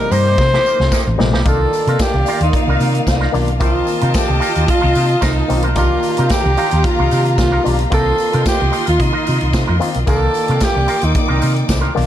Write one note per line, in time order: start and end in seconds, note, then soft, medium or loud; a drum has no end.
0.00 0.38 C3 medium
0.00 1.43 C3 medium
0.00 0.39 G3 medium
0.00 0.39 A#3 medium
0.00 1.44 A#3 medium
0.00 0.42 D#4 medium
0.00 1.44 D#4 medium
0.00 0.13 A#4 medium
0.00 muted clean electric guitar stroke soft
0.12 0.38 G2 loud
0.12 0.27 A#3 medium
0.12 0.27 D#4 medium
0.12 0.26 G4 medium
0.12 1.19 C5 loud
0.12 open hi-hat medium
0.12 tambourine medium
0.27 0.38 A#3 soft
0.27 0.38 D#4 medium
0.27 0.37 G4 medium
0.38 0.57 C3 loud
0.38 muted clean electric guitar stroke soft
0.38 kick loud
0.38 snare medium
0.38 tambourine soft
0.53 0.65 A#3 medium
0.53 0.66 D#4 medium
0.53 0.66 G4 medium
0.53 snare medium
0.66 0.78 A#3 medium
0.66 0.79 D#4 medium
0.66 0.79 G4 medium
0.66 tambourine medium
0.80 0.88 C2 medium
0.80 snare medium
0.92 1.08 A#3 medium
0.92 1.07 D#4 loud
0.92 1.05 G4 medium
0.92 kick medium
0.92 snare medium
0.92 tambourine loud
1.06 1.16 A1 medium
1.06 muted clean electric guitar stroke soft
1.18 1.33 A#1 medium
1.18 1.36 C3 medium
1.18 1.36 G3 medium
1.18 1.36 A#3 medium
1.18 1.37 D#4 loud
1.18 muted clean electric guitar stroke soft
1.18 snare loud
1.33 1.42 B1 loud
1.33 1.45 A#3 medium
1.33 1.44 D#4 medium
1.33 1.44 G4 medium
1.33 snare loud
1.45 1.65 C2 medium
1.45 2.14 D#3 medium
1.45 12.06 D#3 medium
1.45 2.14 A#3 medium
1.45 3.57 A#3 medium
1.45 12.06 A#3 medium
1.45 2.15 D4 medium
1.45 1.71 D#4 medium
1.45 2.15 F4 medium
1.45 12.06 F4 medium
1.45 1.71 F4 medium
1.45 2.04 A4 medium
1.45 1.72 A#4 medium
1.45 3.57 D5 medium
1.45 3.59 D5 medium
1.45 3.57 F5 loud
1.45 kick loud
1.45 closed hi-hat medium
1.45 tambourine medium
1.73 muted clean electric guitar stroke soft
1.73 open hi-hat medium
1.73 tambourine medium
1.87 1.96 C3 loud
1.87 1.99 D#4 medium
1.87 1.99 F4 medium
1.87 1.98 A#4 medium
1.87 closed hi-hat soft
1.99 2.42 G4 loud
1.99 kick loud
1.99 snare loud
1.99 closed hi-hat medium
1.99 tambourine loud
2.14 2.23 C2 medium
2.14 muted clean electric guitar stroke soft
2.26 2.42 D#4 medium
2.26 2.41 F4 medium
2.26 2.41 A#4 medium
2.26 open hi-hat medium
2.26 tambourine medium
2.41 2.49 D#2 medium
2.41 2.53 D#4 soft
2.41 2.54 D#4 medium
2.41 2.53 F4 medium
2.41 2.52 C5 medium
2.41 closed hi-hat medium
2.53 3.31 D#4 medium
2.53 muted clean electric guitar stroke soft
2.53 kick loud
2.53 closed hi-hat medium
2.67 2.76 C2 medium
2.67 2.80 D#4 medium
2.67 2.80 F4 medium
2.67 2.81 A#4 medium
2.80 2.99 C3 loud
2.80 2.93 D#4 medium
2.80 2.93 F4 medium
2.80 2.94 A#4 medium
2.80 open hi-hat medium
2.80 tambourine medium
2.95 closed hi-hat soft
3.07 3.26 C2 medium
3.07 muted clean electric guitar stroke soft
3.07 kick medium
3.07 snare loud
3.07 closed hi-hat soft
3.07 tambourine medium
3.21 3.32 D#4 medium
3.21 3.32 F4 medium
3.21 3.33 A#4 medium
3.21 snare soft
3.32 3.61 B1 medium
3.32 3.51 D#3 medium
3.32 3.51 A#3 medium
3.32 3.52 D4 medium
3.32 3.52 F4 medium
3.32 muted clean electric guitar stroke soft
3.32 open hi-hat medium
3.32 tambourine soft
3.47 muted clean electric guitar stroke soft
3.47 closed hi-hat medium
3.60 3.80 C2 medium
3.60 4.30 D#3 medium
3.60 4.30 A#3 medium
3.60 4.30 C4 medium
3.60 3.85 D#4 medium
3.60 5.72 F4 medium
3.60 3.86 F4 medium
3.60 4.30 F4 medium
3.60 3.86 A#4 medium
3.60 5.72 D#5 medium
3.60 5.72 A5 loud
3.60 kick loud
3.60 closed hi-hat medium
3.60 tambourine medium
3.65 4.19 F4 medium
3.87 muted clean electric guitar stroke soft
3.87 open hi-hat soft
3.87 tambourine soft
4.01 4.11 C3 loud
4.01 4.13 D#4 soft
4.01 4.14 F4 medium
4.01 4.13 A#4 medium
4.01 closed hi-hat medium
4.14 4.69 G4 medium
4.14 kick loud
4.14 snare loud
4.14 closed hi-hat medium
4.14 tambourine loud
4.29 4.38 C2 medium
4.29 muted clean electric guitar stroke medium
4.40 4.55 D#4 medium
4.40 4.55 F4 medium
4.40 4.54 A#4 medium
4.40 open hi-hat medium
4.40 tambourine medium
4.55 4.65 D#2 medium
4.55 4.66 D#4 medium
4.55 4.67 F4 medium
4.55 4.67 A#4 medium
4.55 closed hi-hat medium
4.67 5.25 F4 medium
4.67 muted clean electric guitar stroke soft
4.67 kick loud
4.67 closed hi-hat medium
4.81 4.92 C2 loud
4.81 4.94 D#4 medium
4.81 4.95 F4 medium
4.81 4.96 A#4 medium
4.95 5.15 C3 medium
4.95 5.08 D#4 medium
4.95 5.09 F4 medium
4.95 5.08 A#4 medium
4.95 open hi-hat medium
4.95 tambourine medium
5.09 closed hi-hat soft
5.21 5.41 C2 medium
5.21 5.38 D#4 medium
5.21 5.64 D#4 loud
5.21 5.37 F4 loud
5.21 5.36 A#4 loud
5.21 kick medium
5.21 snare loud
5.21 closed hi-hat medium
5.21 tambourine medium
5.37 muted clean electric guitar stroke soft
5.48 5.76 B1 medium
5.48 5.67 D#3 medium
5.48 5.67 A#3 medium
5.48 5.67 C4 medium
5.48 5.68 F4 medium
5.48 muted clean electric guitar stroke soft
5.48 open hi-hat medium
5.48 tambourine soft
5.62 5.75 D#4 medium
5.62 5.75 F4 soft
5.62 5.75 A#4 medium
5.62 closed hi-hat medium
5.75 5.95 C2 medium
5.75 6.45 D#3 medium
5.75 6.45 A#3 medium
5.75 6.46 D4 medium
5.75 7.91 D4 medium
5.75 6.02 D#4 medium
5.75 6.46 F4 medium
5.75 6.32 F4 medium
5.75 6.02 F4 medium
5.75 7.88 G4 medium
5.75 6.03 A#4 medium
5.75 7.88 F5 medium
5.75 7.88 A#5 loud
5.75 kick loud
5.75 closed hi-hat medium
5.75 tambourine medium
6.03 muted clean electric guitar stroke soft
6.03 open hi-hat medium
6.03 tambourine soft
6.17 6.27 C3 medium
6.17 6.30 D#4 medium
6.17 6.30 F4 medium
6.17 6.29 A#4 medium
6.17 closed hi-hat medium
6.29 6.87 G4 loud
6.29 muted clean electric guitar stroke soft
6.29 kick loud
6.29 snare loud
6.29 closed hi-hat medium
6.29 tambourine loud
6.45 6.54 C2 medium
6.45 muted clean electric guitar stroke soft
6.57 6.73 D#4 medium
6.57 6.72 F4 medium
6.57 6.72 A#4 medium
6.57 open hi-hat medium
6.57 tambourine medium
6.71 6.81 D#2 medium
6.71 6.84 D#4 medium
6.71 6.84 F4 medium
6.71 6.83 C5 medium
6.71 closed hi-hat medium
6.84 7.38 F4 medium
6.84 kick loud
6.84 closed hi-hat medium
6.99 7.08 C2 medium
6.99 7.11 D#4 medium
6.99 7.12 F4 medium
6.99 7.13 A#4 medium
7.11 7.40 C3 medium
7.11 7.24 D#4 medium
7.11 7.25 F4 medium
7.11 7.24 A#4 medium
7.11 open hi-hat medium
7.11 tambourine medium
7.25 muted clean electric guitar stroke soft
7.25 closed hi-hat soft
7.38 7.57 C2 medium
7.38 7.77 F4 medium
7.38 muted clean electric guitar stroke soft
7.38 kick loud
7.38 snare medium
7.38 closed hi-hat medium
7.38 tambourine medium
7.52 7.63 D#4 medium
7.52 7.64 F4 medium
7.52 7.64 A#4 medium
7.64 7.85 B1 medium
7.64 7.82 D#3 medium
7.64 7.83 A#3 medium
7.64 7.83 D4 medium
7.64 7.83 F4 medium
7.64 open hi-hat medium
7.64 tambourine soft
7.79 muted clean electric guitar stroke soft
7.79 closed hi-hat medium
7.90 8.11 C2 medium
7.90 8.61 D#3 medium
7.90 8.61 A#3 medium
7.90 8.61 C4 medium
7.90 8.17 D#4 medium
7.90 8.62 F4 medium
7.90 8.17 F4 medium
7.90 10.05 F4 medium
7.90 8.43 A4 loud
7.90 8.18 A#4 medium
7.90 10.05 D#5 medium
7.90 10.05 C6 medium
7.90 kick loud
7.90 closed hi-hat medium
7.90 tambourine medium
8.18 open hi-hat medium
8.18 tambourine medium
8.33 8.43 C3 medium
8.33 8.44 D#4 medium
8.33 8.44 F4 medium
8.33 8.45 A#4 medium
8.33 closed hi-hat soft
8.45 8.86 G4 medium
8.45 muted clean electric guitar stroke soft
8.45 kick loud
8.45 snare loud
8.45 closed hi-hat medium
8.45 tambourine loud
8.61 8.70 C2 medium
8.61 muted clean electric guitar stroke medium
8.72 8.86 D#4 medium
8.72 8.86 F4 medium
8.72 8.84 A#4 medium
8.72 open hi-hat medium
8.72 tambourine medium
8.86 8.97 D#2 medium
8.86 8.98 D#4 medium
8.86 8.98 F4 medium
8.86 9.04 F4 medium
8.86 8.98 A#4 medium
8.86 closed hi-hat medium
8.99 9.10 C3 loud
8.99 9.82 D#4 medium
8.99 muted clean electric guitar stroke soft
8.99 kick loud
8.99 closed hi-hat medium
8.99 tambourine soft
9.13 9.24 D#4 medium
9.13 9.26 F4 medium
9.13 9.26 A#4 medium
9.25 9.38 C3 medium
9.25 9.39 D#4 medium
9.25 9.40 F4 medium
9.25 9.39 A#4 medium
9.25 open hi-hat medium
9.25 tambourine medium
9.40 9.51 C2 medium
9.40 muted clean electric guitar stroke soft
9.40 closed hi-hat soft
9.53 9.64 C3 medium
9.53 muted clean electric guitar stroke soft
9.53 kick medium
9.53 snare loud
9.53 closed hi-hat medium
9.53 tambourine medium
9.67 9.78 F2 medium
9.67 9.79 D#4 medium
9.67 9.79 F4 medium
9.67 9.80 A#4 medium
9.80 9.98 D#3 medium
9.80 9.98 A#3 medium
9.80 9.99 C4 medium
9.80 9.99 F4 medium
9.80 muted clean electric guitar stroke soft
9.80 open hi-hat medium
9.80 tambourine soft
9.94 10.04 B1 medium
9.94 muted clean electric guitar stroke soft
9.94 closed hi-hat medium
10.06 10.27 C2 medium
10.06 10.77 D#3 medium
10.06 10.77 A#3 medium
10.06 12.06 A#3 medium
10.06 10.77 D4 medium
10.06 10.33 D#4 medium
10.06 10.78 F4 medium
10.06 10.34 F4 medium
10.06 10.65 A4 loud
10.06 10.34 A#4 medium
10.06 12.06 D5 medium
10.06 12.06 G5 medium
10.06 12.06 D6 medium
10.06 kick loud
10.06 closed hi-hat medium
10.06 tambourine medium
10.34 muted clean electric guitar stroke soft
10.34 open hi-hat medium
10.34 tambourine medium
10.48 10.58 C3 medium
10.48 10.61 D#4 soft
10.48 10.61 F4 medium
10.48 10.61 A#4 medium
10.48 closed hi-hat medium
10.60 11.06 G4 loud
10.60 kick loud
10.60 snare loud
10.60 closed hi-hat medium
10.60 tambourine medium
10.76 10.85 C2 medium
10.76 muted clean electric guitar stroke soft
10.87 11.02 D#4 medium
10.87 11.01 F4 medium
10.87 11.00 A#4 medium
10.87 open hi-hat medium
10.87 tambourine soft
11.01 11.12 D#2 medium
11.01 11.13 D#4 medium
11.01 11.17 D#4 medium
11.01 11.14 F4 medium
11.01 11.13 C5 medium
11.01 closed hi-hat medium
11.15 11.94 D#4 medium
11.15 muted clean electric guitar stroke soft
11.15 kick loud
11.15 closed hi-hat medium
11.15 tambourine soft
11.28 11.39 C2 medium
11.28 11.39 D#4 medium
11.28 11.41 F4 medium
11.28 11.41 A#4 medium
11.40 11.62 C3 medium
11.40 11.54 D#4 medium
11.40 11.55 F4 medium
11.40 11.54 A#4 medium
11.40 open hi-hat medium
11.40 tambourine medium
11.56 closed hi-hat soft
11.67 11.88 C2 medium
11.67 muted clean electric guitar stroke soft
11.67 kick medium
11.67 snare medium
11.67 closed hi-hat medium
11.67 tambourine loud
11.81 11.93 D#4 medium
11.81 11.94 F4 medium
11.81 11.95 A#4 medium
11.95 12.06 B1 medium
11.95 12.06 D#3 medium
11.95 12.06 A#3 medium
11.95 12.06 D4 medium
11.95 12.06 F4 medium
11.95 open hi-hat medium